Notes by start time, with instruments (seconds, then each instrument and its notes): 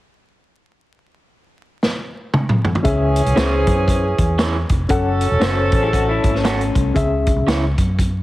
1.83 snare
2.34 mid tom
2.49 mid tom
2.65 floor tom
2.75 floor tom
2.83 fingered electric bass C#2, reed electric piano C#3 C#4 G#4 E5, horn section E3 C#4 G#4, kick, closed hi-hat
3.16 closed hi-hat
3.26 fingered electric bass C2, closed hi-hat
3.35 fingered electric bass C#2, reed electric piano C#4 G#4 C5, clean electric guitar C#4 E4 G#4 C#5, snare, closed hi-hat
3.67 fingered electric bass F#2, kick, closed hi-hat
3.88 kick, closed hi-hat
4.18 fingered electric bass E2, kick, closed hi-hat
4.38 clean electric guitar C#4 E4 G#4 C#5, snare, closed hi-hat
4.69 fingered electric bass F1, kick, closed hi-hat
4.89 fingered electric bass F#1, horn section F#3 C#4 A4, reed electric piano C#4 A4 F#5, kick, closed hi-hat
5.21 closed hi-hat
5.31 fingered electric bass E1
5.40 fingered electric bass F#1, reed electric piano C#4 A4 C5, clean electric guitar C#4 F#4 A4 C#5, snare, closed hi-hat
5.72 fingered electric bass A1, kick, closed hi-hat
5.83 clean electric guitar E4 G#4
5.93 clean electric guitar D#4 F#4, kick, closed hi-hat
6.09 clean electric guitar C#4 E4
6.24 fingered electric bass G#1, kick, closed hi-hat
6.35 clean electric guitar A3 C#4, snare
6.44 clean electric guitar C#4 F#4 A4 C#5, snare, closed hi-hat
6.61 closed hi-hat
6.75 fingered electric bass C2, kick, closed hi-hat
6.94 fingered electric bass C#2, reed electric piano C#3 C#4 G#4 E5, kick, closed hi-hat
7.26 kick, closed hi-hat
7.36 fingered electric bass C2
7.47 fingered electric bass C#2, clean electric guitar C#4 E4 G#4 C#5, snare, closed hi-hat
7.78 fingered electric bass F#2, kick, closed hi-hat
7.99 kick, closed hi-hat